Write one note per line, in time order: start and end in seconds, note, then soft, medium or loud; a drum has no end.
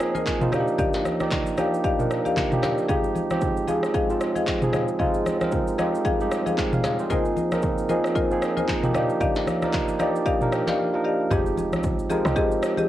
0.00 0.41 F3 medium
0.00 0.42 A#3 medium
0.00 0.42 C4 medium
0.00 0.42 D#4 medium
0.00 0.54 G#4 loud
0.00 cross-stick loud
0.00 shaker medium
0.15 0.25 F4 medium
0.15 0.25 A#4 medium
0.15 0.25 C5 medium
0.15 0.25 D#5 medium
0.15 0.25 G#5 medium
0.15 high conga medium
0.15 shaker medium
0.26 kick medium
0.26 clap medium
0.26 shaker medium
0.41 0.51 F3 medium
0.41 0.52 A#3 medium
0.41 0.53 C4 medium
0.41 0.52 D#4 medium
0.41 0.53 F4 medium
0.41 mid tom loud
0.41 high conga medium
0.41 shaker medium
0.52 1.05 F3 medium
0.52 1.05 A#3 medium
0.52 1.05 D4 medium
0.52 1.06 D#4 medium
0.52 0.61 F#4 medium
0.52 0.66 G4 medium
0.52 0.66 D5 medium
0.52 0.66 D#5 medium
0.52 0.66 F5 medium
0.52 cross-stick loud
0.52 low conga medium
0.52 shaker medium
0.60 1.09 G4 loud
0.68 shaker medium
0.78 1.52 G4 medium
0.78 1.52 D5 medium
0.78 1.52 D#5 medium
0.78 1.53 F5 loud
0.78 kick loud
0.78 low conga medium
0.78 shaker medium
0.93 snare medium
0.93 shaker medium
1.05 cross-stick medium
1.05 high conga medium
1.05 shaker medium
1.20 1.51 F3 medium
1.20 1.51 A#3 medium
1.20 1.52 D#4 medium
1.20 1.52 G4 medium
1.20 1.51 D5 medium
1.20 cross-stick medium
1.20 high conga medium
1.20 shaker medium
1.31 kick medium
1.31 clap medium
1.31 low conga medium
1.31 shaker medium
1.46 shaker medium
1.57 1.90 F3 medium
1.57 1.90 A#3 medium
1.57 1.90 D4 medium
1.57 1.91 D#4 medium
1.57 1.82 G4 medium
1.57 1.91 G4 medium
1.57 1.82 D5 medium
1.57 1.82 D#5 medium
1.57 1.82 F5 medium
1.57 cross-stick medium
1.57 high conga medium
1.57 shaker medium
1.74 shaker medium
1.84 1.97 G4 medium
1.84 1.97 D5 medium
1.84 1.97 D#5 medium
1.84 1.98 F5 medium
1.84 kick loud
1.84 shaker medium
1.99 2.40 F3 medium
1.99 2.40 A#3 medium
1.99 2.40 D4 medium
1.99 2.40 D#4 medium
1.99 2.40 A#4 medium
1.99 mid tom medium
1.99 shaker medium
2.11 cross-stick medium
2.11 shaker medium
2.25 2.35 G4 medium
2.25 2.35 D5 medium
2.25 2.35 D#5 medium
2.25 2.35 F5 medium
2.25 high conga medium
2.25 shaker medium
2.36 kick medium
2.36 clap medium
2.36 low conga medium
2.36 shaker medium
2.52 2.82 F3 medium
2.52 2.83 A#3 medium
2.52 2.83 D4 medium
2.52 2.83 D#4 medium
2.52 2.83 G4 medium
2.52 mid tom medium
2.52 high conga medium
2.52 shaker soft
2.62 2.76 G4 medium
2.62 2.76 D5 medium
2.62 2.76 D#5 medium
2.62 2.76 F5 medium
2.62 cross-stick loud
2.62 snare medium
2.62 low conga medium
2.62 shaker loud
2.78 shaker medium
2.89 3.22 F3 medium
2.89 3.22 G#3 medium
2.89 3.22 C4 medium
2.89 3.22 D#4 medium
2.89 3.22 G4 loud
2.89 3.63 G#4 medium
2.89 3.63 D#5 medium
2.89 3.63 F5 medium
2.89 3.63 G5 loud
2.89 kick loud
2.89 low conga medium
2.89 shaker medium
3.04 shaker medium
3.16 high conga medium
3.16 shaker medium
3.30 3.62 F3 medium
3.30 3.62 G#3 medium
3.30 3.62 C4 medium
3.30 3.62 D#4 medium
3.30 3.62 G4 medium
3.30 cross-stick medium
3.30 high conga medium
3.30 shaker medium
3.41 kick medium
3.41 low conga medium
3.41 shaker medium
3.57 shaker medium
3.68 4.00 F3 medium
3.68 4.01 G#3 medium
3.68 4.01 C4 medium
3.68 4.01 D#4 medium
3.68 3.92 G#4 medium
3.68 4.01 G#4 loud
3.68 3.92 D#5 medium
3.68 3.93 F5 medium
3.68 3.93 G5 medium
3.68 high conga medium
3.68 shaker medium
3.83 cross-stick medium
3.83 shaker medium
3.94 4.08 G#4 medium
3.94 4.08 D#5 medium
3.94 4.08 F5 medium
3.94 4.08 G5 medium
3.94 kick loud
3.94 shaker medium
4.10 4.50 F3 medium
4.10 4.50 G#3 medium
4.10 4.50 C4 medium
4.10 4.51 D#4 medium
4.10 4.51 F4 medium
4.10 shaker soft
4.21 cross-stick medium
4.21 shaker medium
4.36 4.46 G#4 medium
4.36 4.46 D#5 medium
4.36 4.46 F5 medium
4.36 4.46 G5 medium
4.36 high conga medium
4.36 shaker medium
4.47 kick medium
4.47 clap medium
4.47 shaker medium
4.62 4.93 F3 medium
4.62 4.93 G#3 medium
4.62 4.93 C4 medium
4.62 4.94 D#4 medium
4.62 4.94 G#4 medium
4.62 mid tom medium
4.62 high conga medium
4.62 shaker soft
4.73 4.87 G#4 medium
4.73 4.87 D#5 medium
4.73 4.87 F5 medium
4.73 4.87 G5 medium
4.73 cross-stick loud
4.73 low conga medium
4.73 shaker medium
4.88 shaker medium
4.99 5.32 F3 medium
4.99 5.32 G#3 medium
4.99 5.33 C4 medium
4.99 5.33 D#4 medium
4.99 5.33 F4 medium
4.99 5.73 G#4 medium
4.99 5.73 D#5 medium
4.99 5.73 F5 medium
4.99 5.73 G5 loud
4.99 kick loud
4.99 low conga medium
4.99 shaker medium
5.14 shaker medium
5.26 cross-stick medium
5.26 high conga medium
5.26 shaker medium
5.41 5.72 F3 medium
5.41 5.72 G#3 medium
5.41 5.72 C4 medium
5.41 5.73 D#4 medium
5.41 5.73 A#4 loud
5.41 cross-stick medium
5.41 high conga medium
5.41 shaker medium
5.52 kick medium
5.52 low conga medium
5.52 shaker medium
5.67 shaker medium
5.78 6.11 F3 medium
5.78 6.11 G#3 medium
5.78 6.11 C4 medium
5.78 6.12 D#4 medium
5.78 6.12 G4 loud
5.78 6.03 G#4 medium
5.78 6.03 D#5 medium
5.78 6.03 F5 medium
5.78 6.03 G5 medium
5.78 cross-stick medium
5.78 high conga medium
5.78 shaker medium
5.95 shaker medium
6.05 6.18 G#4 medium
6.05 6.18 D#5 medium
6.05 6.19 F5 medium
6.05 6.19 G5 loud
6.05 kick loud
6.05 shaker medium
6.20 6.61 F3 medium
6.20 6.26 G3 medium
6.20 6.61 C4 medium
6.20 6.61 D#4 medium
6.20 6.32 G4 medium
6.20 shaker soft
6.27 6.64 G#3 medium
6.31 cross-stick loud
6.31 shaker medium
6.46 6.56 G#4 medium
6.46 6.56 D#5 medium
6.46 6.56 F5 medium
6.46 6.57 G5 medium
6.46 high conga medium
6.46 shaker medium
6.58 6.73 F5 medium
6.58 6.72 G#5 medium
6.58 kick medium
6.58 clap medium
6.58 shaker medium
6.73 6.84 D5 medium
6.73 6.84 F5 medium
6.73 mid tom loud
6.73 high conga medium
6.73 shaker soft
6.84 6.97 G#4 medium
6.84 6.99 C5 medium
6.84 6.97 D#5 medium
6.84 6.99 D#5 medium
6.84 6.97 F5 medium
6.84 6.98 G5 medium
6.84 cross-stick loud
6.84 snare medium
6.84 low conga medium
6.84 shaker loud
6.99 7.11 G#4 medium
6.99 7.25 C5 medium
6.99 shaker medium
7.10 7.43 F3 medium
7.10 7.43 A#3 medium
7.10 7.43 C4 medium
7.10 7.43 D#4 medium
7.10 7.84 F4 medium
7.10 7.43 G#4 loud
7.10 7.84 A#4 medium
7.10 7.84 C5 medium
7.10 7.84 D#5 medium
7.10 7.84 G#5 loud
7.10 kick loud
7.10 low conga medium
7.10 shaker medium
7.25 shaker medium
7.37 high conga medium
7.37 shaker medium
7.52 7.83 F3 medium
7.52 7.83 A#3 medium
7.52 7.83 C4 medium
7.52 7.83 D#4 medium
7.52 7.83 A#4 medium
7.52 cross-stick loud
7.52 high conga medium
7.52 shaker medium
7.62 kick medium
7.62 low conga medium
7.62 shaker medium
7.78 shaker medium
7.89 8.22 F3 medium
7.89 8.22 A#3 medium
7.89 8.22 C4 medium
7.89 8.22 D#4 medium
7.89 8.14 F4 medium
7.89 8.22 G#4 medium
7.89 8.14 A#4 medium
7.89 8.14 C5 medium
7.89 8.14 D#5 medium
7.89 8.14 G#5 medium
7.89 high conga medium
7.89 shaker medium
8.04 cross-stick medium
8.04 shaker medium
8.15 8.29 F4 medium
8.15 8.29 A#4 medium
8.15 8.29 C5 medium
8.15 8.29 D#5 medium
8.15 8.29 G#5 loud
8.15 kick loud
8.15 shaker medium
8.31 8.71 F3 medium
8.31 8.72 A#3 medium
8.31 8.72 C4 medium
8.31 8.72 D#4 medium
8.31 8.72 G#4 medium
8.31 shaker soft
8.42 cross-stick loud
8.42 shaker medium
8.57 8.67 F4 medium
8.57 8.67 A#4 medium
8.57 8.67 C5 medium
8.57 8.67 D#5 medium
8.57 8.67 G#5 medium
8.57 high conga medium
8.57 shaker medium
8.68 kick medium
8.68 clap medium
8.68 shaker medium
8.83 8.93 F3 medium
8.83 8.93 A#3 medium
8.83 8.95 C4 medium
8.83 8.94 D#4 medium
8.83 8.95 G4 loud
8.83 mid tom loud
8.83 high conga medium
8.83 shaker soft
8.94 9.47 F3 medium
8.94 9.47 A#3 medium
8.94 9.47 D4 medium
8.94 9.48 D#4 medium
8.94 9.08 G4 medium
8.94 9.48 G4 loud
8.94 9.08 D5 medium
8.94 9.08 D#5 medium
8.94 9.08 F5 medium
8.94 cross-stick loud
8.94 low conga medium
8.94 shaker medium
9.10 shaker medium
9.20 9.94 G4 medium
9.20 9.94 D5 medium
9.20 9.94 D#5 medium
9.20 9.95 F5 loud
9.20 kick loud
9.20 low conga medium
9.20 shaker medium
9.35 snare medium
9.35 shaker medium
9.47 cross-stick medium
9.47 high conga medium
9.47 shaker medium
9.62 9.93 F3 medium
9.62 9.93 A#3 medium
9.62 9.94 D#4 medium
9.62 9.94 A#4 medium
9.62 9.93 D5 medium
9.62 cross-stick medium
9.62 high conga medium
9.62 shaker medium
9.73 kick medium
9.73 clap medium
9.73 low conga medium
9.73 shaker medium
9.88 shaker medium
9.99 10.32 F3 medium
9.99 10.32 A#3 medium
9.99 10.32 D4 medium
9.99 10.33 D#4 medium
9.99 10.24 G4 medium
9.99 10.33 G4 medium
9.99 10.24 D5 medium
9.99 10.25 D5 medium
9.99 10.24 D#5 medium
9.99 10.24 F5 medium
9.99 cross-stick medium
9.99 high conga medium
9.99 shaker medium
10.16 shaker medium
10.26 10.39 G4 medium
10.26 10.39 D5 medium
10.26 10.39 D#5 medium
10.26 10.51 D#5 medium
10.26 10.40 F5 loud
10.26 kick loud
10.26 shaker medium
10.41 10.82 F3 medium
10.41 10.82 A#3 medium
10.41 10.82 D4 medium
10.41 10.82 D#4 medium
10.41 10.82 A#4 medium
10.41 mid tom medium
10.41 shaker medium
10.52 10.77 G5 medium
10.52 cross-stick loud
10.52 shaker medium
10.67 10.77 G4 medium
10.67 10.77 D5 medium
10.67 10.77 D#5 medium
10.67 10.77 F5 medium
10.67 snare medium
10.67 high conga medium
10.67 shaker medium
10.80 11.04 F5 medium
10.94 11.25 F3 medium
10.94 11.25 A#3 medium
10.94 11.25 D4 medium
10.94 11.25 D#4 medium
10.94 11.25 A#4 loud
11.04 11.18 G4 medium
11.04 11.18 D5 medium
11.04 11.18 D#5 medium
11.04 11.19 F5 medium
11.04 11.30 A#5 medium
11.31 11.74 F1 loud
11.31 11.96 F3 medium
11.31 11.96 G#3 medium
11.31 11.97 C4 medium
11.31 11.97 D#4 medium
11.31 12.05 G4 medium
11.31 11.97 G4 loud
11.31 12.05 G#4 medium
11.31 12.05 D#5 loud
11.31 kick loud
11.31 low conga medium
11.31 shaker medium
11.46 shaker medium
11.57 high conga medium
11.57 shaker medium
11.73 12.01 C2 medium
11.73 cross-stick medium
11.73 high conga medium
11.73 shaker medium
11.83 kick loud
11.83 low conga medium
11.83 shaker medium
11.99 12.22 A#1 loud
11.99 shaker medium
12.10 12.22 F3 medium
12.10 12.23 G#3 medium
12.10 12.23 C4 medium
12.10 12.23 D#4 medium
12.10 12.35 G4 medium
12.10 12.35 G#4 medium
12.10 12.23 A#4 medium
12.10 12.35 D#5 medium
12.10 high conga medium
12.10 shaker medium
12.25 12.35 C2 medium
12.25 12.89 F3 medium
12.25 12.89 G#3 medium
12.25 12.89 C4 medium
12.25 12.89 D#4 medium
12.25 12.89 G4 medium
12.25 cross-stick loud
12.25 shaker medium
12.36 12.50 G4 medium
12.36 12.50 G#4 medium
12.36 12.50 D#5 loud
12.36 kick loud
12.36 shaker medium
12.52 shaker medium
12.63 cross-stick loud
12.63 shaker loud
12.78 12.88 G4 medium
12.78 12.88 G#4 medium
12.78 12.88 D#5 medium
12.78 high conga medium
12.78 shaker medium